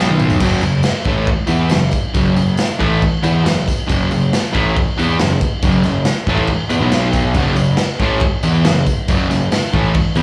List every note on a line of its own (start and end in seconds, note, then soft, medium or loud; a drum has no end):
0.00 0.38 B1 medium
0.00 0.41 B2 medium
0.00 0.41 F#3 medium
0.00 0.42 B3 loud
0.10 high tom medium
0.19 mid tom loud
0.19 tambourine medium
0.30 floor tom medium
0.30 tambourine medium
0.40 0.62 F#1 loud
0.40 0.62 F#2 medium
0.40 0.62 C#3 medium
0.40 0.63 F#3 loud
0.40 kick loud
0.40 crash loud
0.40 tambourine medium
0.40 crash medium
0.61 0.84 F#1 medium
0.61 0.81 F#2 medium
0.61 0.81 C#3 medium
0.61 tambourine medium
0.61 crash medium
0.83 snare loud
0.83 tambourine loud
0.83 crash medium
1.04 1.27 A1 medium
1.04 1.28 A2 loud
1.04 1.28 E3 loud
1.04 1.28 A3 loud
1.04 kick medium
1.04 tambourine soft
1.04 crash medium
1.27 muted distorted electric guitar stroke medium
1.27 muted picked electric bass stroke soft
1.27 kick loud
1.27 crash medium
1.47 1.69 E2 loud
1.47 1.70 E3 medium
1.47 1.70 B3 medium
1.47 1.70 E4 loud
1.47 tambourine medium
1.47 crash medium
1.70 1.92 F#1 medium
1.70 1.89 F#2 medium
1.70 1.89 C#3 medium
1.70 snare loud
1.70 tambourine medium
1.70 crash medium
1.91 kick medium
1.91 tambourine medium
1.91 crash medium
2.14 2.36 F#1 loud
2.14 2.34 F#2 medium
2.14 2.35 C#3 loud
2.14 2.37 F#3 medium
2.14 kick loud
2.14 tambourine medium
2.14 crash medium
2.35 2.58 F#1 medium
2.35 2.54 F#2 medium
2.35 2.55 C#3 medium
2.35 tambourine medium
2.35 crash medium
2.57 snare loud
2.57 tambourine loud
2.57 crash medium
2.79 3.01 A1 loud
2.79 3.01 A2 loud
2.79 3.02 E3 loud
2.79 3.02 A3 loud
2.79 kick medium
2.79 tambourine soft
2.79 crash medium
3.02 muted picked electric bass stroke soft
3.02 muted distorted electric guitar stroke medium
3.02 kick loud
3.02 crash medium
3.23 3.44 E2 loud
3.23 3.45 E3 medium
3.23 3.46 B3 medium
3.23 3.46 E4 loud
3.23 tambourine medium
3.23 crash medium
3.44 3.66 F#1 medium
3.44 3.63 F#2 medium
3.44 3.63 C#3 medium
3.44 snare loud
3.44 tambourine loud
3.44 crash medium
3.68 kick medium
3.68 tambourine medium
3.68 crash medium
3.87 4.10 F#1 loud
3.87 4.09 F#2 medium
3.87 4.10 C#3 loud
3.87 4.11 F#3 loud
3.87 kick loud
3.87 tambourine medium
3.87 crash medium
4.10 4.32 F#1 medium
4.10 4.28 F#2 medium
4.10 4.29 C#3 medium
4.10 tambourine medium
4.10 crash medium
4.33 snare loud
4.33 tambourine loud
4.33 crash medium
4.52 4.75 A1 loud
4.52 4.75 A2 medium
4.52 4.75 E3 loud
4.52 4.75 A3 loud
4.52 kick medium
4.52 tambourine soft
4.52 crash medium
4.76 muted distorted electric guitar stroke medium
4.76 muted picked electric bass stroke soft
4.76 kick loud
4.76 crash medium
4.97 5.19 E2 loud
4.97 5.19 E3 medium
4.97 5.19 B3 medium
4.97 5.19 E4 loud
4.97 tambourine medium
4.97 crash medium
5.19 5.40 F#1 medium
5.19 5.38 F#2 medium
5.19 5.38 C#3 medium
5.19 snare loud
5.19 tambourine medium
5.19 crash medium
5.41 kick medium
5.41 tambourine medium
5.41 crash medium
5.62 5.83 F#1 loud
5.62 5.83 F#2 medium
5.62 5.83 C#3 loud
5.62 5.85 F#3 loud
5.62 kick loud
5.62 tambourine medium
5.62 crash medium
5.83 6.05 F#1 medium
5.83 6.02 F#2 medium
5.83 6.02 C#3 medium
5.83 snare soft
5.83 tambourine medium
5.83 crash medium
6.05 snare loud
6.05 tambourine medium
6.05 crash medium
6.27 6.47 A1 medium
6.27 6.49 A2 medium
6.27 6.49 E3 loud
6.27 6.49 A3 loud
6.27 kick medium
6.27 tambourine soft
6.27 crash medium
6.38 kick medium
6.47 muted distorted electric guitar stroke medium
6.47 muted picked electric bass stroke soft
6.47 kick loud
6.47 crash medium
6.69 6.80 E2 loud
6.69 6.79 E3 medium
6.69 6.80 B3 loud
6.69 tambourine medium
6.69 crash medium
6.80 7.31 B1 medium
6.80 7.34 B2 medium
6.80 7.34 F#3 loud
6.80 7.35 B3 medium
6.92 snare loud
6.92 tambourine medium
6.92 crash medium
7.13 kick medium
7.13 tambourine medium
7.13 crash medium
7.34 7.55 F#1 medium
7.34 7.56 F#2 medium
7.34 7.55 C#3 medium
7.34 7.57 F#3 loud
7.34 kick loud
7.34 tambourine medium
7.34 crash medium
7.56 7.77 F#1 medium
7.56 7.74 F#2 medium
7.56 7.74 C#3 medium
7.56 tambourine medium
7.56 crash medium
7.77 snare loud
7.77 tambourine medium
7.77 crash medium
7.99 8.20 A1 medium
7.99 8.21 A2 loud
7.99 8.22 E3 loud
7.99 8.22 A3 loud
7.99 kick medium
7.99 tambourine soft
7.99 crash medium
8.20 muted picked electric bass stroke soft
8.20 muted distorted electric guitar stroke medium
8.20 kick loud
8.20 crash medium
8.43 8.64 E2 medium
8.43 8.64 E3 medium
8.43 8.65 B3 loud
8.43 8.65 E4 medium
8.43 tambourine medium
8.43 crash medium
8.65 8.85 F#1 medium
8.65 8.82 F#2 medium
8.65 8.83 C#3 medium
8.65 snare loud
8.65 tambourine medium
8.65 crash medium
8.86 kick medium
8.86 tambourine medium
8.86 crash medium
9.08 9.28 F#1 loud
9.08 9.30 F#2 medium
9.08 9.30 C#3 medium
9.08 9.31 F#3 loud
9.08 kick loud
9.08 tambourine medium
9.08 crash medium
9.29 9.49 F#1 medium
9.29 9.48 F#2 medium
9.29 9.48 C#3 medium
9.29 snare soft
9.29 tambourine medium
9.29 crash medium
9.52 snare loud
9.52 tambourine medium
9.52 crash medium
9.74 9.93 A1 medium
9.74 9.94 A2 loud
9.74 9.95 E3 loud
9.74 9.95 A3 loud
9.74 kick medium
9.74 crash medium
9.94 muted picked electric bass stroke soft
9.94 muted distorted electric guitar stroke medium
9.94 kick loud
9.94 crash medium
10.15 10.23 E2 loud
10.15 10.23 E3 medium
10.15 10.23 B3 loud
10.15 10.23 E4 medium
10.15 tambourine medium
10.15 crash medium